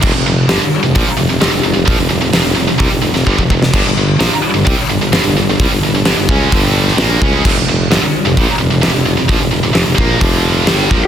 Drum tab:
CC |x---------------|----------------|x---------------|----------------|
HH |----o---o---o---|o---o---o-------|----o---o---o---|o---o---o---o---|
SD |----o-------o---|----oo-----o---o|----o-------o---|----o------oo---|
BD |o-------o-------|o-------o---ooo-|o-------o-------|o-----o-o-----o-|

CC |x---------------|----------------|
HH |----o---o---o---|o---o---o---o---|
SD |----o-------o---|----o-------o---|
BD |o-------o-------|o-----o-o-----o-|